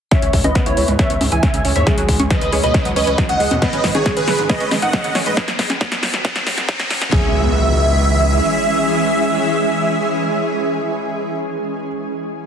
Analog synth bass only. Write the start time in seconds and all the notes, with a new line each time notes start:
0.22 C#2
0.33 C#2
0.44 C#2
0.66 C#2
0.77 C#2
0.88 C#2
1.10 C#2
1.21 C#2
1.32 C#2
1.54 C#2
1.65 C#2
1.76 D#2
1.98 C#2
2.09 C#2
2.20 C#2
2.42 C#2
2.52 C#2
2.63 C#2
2.85 C#2
2.96 C#2
3.07 C#2
3.29 C#2
3.40 C#2
3.51 D#2
3.73 G#1
3.84 G#1
3.95 G#1
4.17 G#1
4.28 G#1
4.39 G#1
4.61 G#1
4.71 G#1
4.82 G#1
5.04 G#1
5.15 G#1
5.26 A1
7.12 C#2